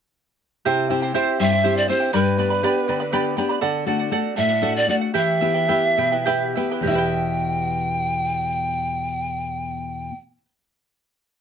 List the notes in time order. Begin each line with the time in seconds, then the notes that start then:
0.65 C3 E4 G4 C5 E5 G5
0.89 C4 E4 G4 C5 E5 G5
1.02 E4 C5 G5
1.14 C4 E4 G4 C5 E5 G5
1.39 G2 E4 C5 E5 G5
1.52 E4 C5 G5
1.63 C4 E4 G4 C5 E5 G5
1.77 D5
1.88 C4 E4 G4 C5 E5 G5
2.00 E4 C5 G5
2.13 G2 G4 B4 D5 G5 B5
2.38 B3 D4 G4 B4 D5 G5 B5
2.50 B4 D5 B5
2.63 B3 D4 G4 B4 D5 G5 B5
2.88 D3 B4 D5 G5 B5
3.00 B4 D5 B5
3.13 B3 D4 G4 B4 D5 G5 B5
3.37 B3 D4 G4 B4 D5 G5 B5
3.49 B4 D5 B5
3.61 D3 A4 D5 F#5
3.86 A3 D4 F#4 A4 D5 F#5
3.99 D5 F#5
4.11 A3 D4 F#4 A4 D5 F#5
4.36 A2 A4 D5 E5 F#5
4.49 D5 F#5
4.62 A3 D4 F#4 A4 D5 F#5
4.76 D5
4.88 A3 D4 F#4 A4 D5 F#5
5.01 D5 F#5
5.14 E3 E4 G4 B4 E5 G5
5.41 B3 E4 G4 B4 E5 G5
5.54 E4 B4 G5
5.68 B3 E4 G4 B4 E5 G5
5.97 B2 E4 B4 E5 G5
6.12 E4 B4 G5
6.26 B3 E4 G4 B4 E5 G5
6.56 B3 E4 G4 B4 E5 G5
6.71 E4 B4 G5
6.81 E2 B2 G4
6.86 B3 E4 E5 G5
6.90 E4 G4 E5
6.95 B4 G5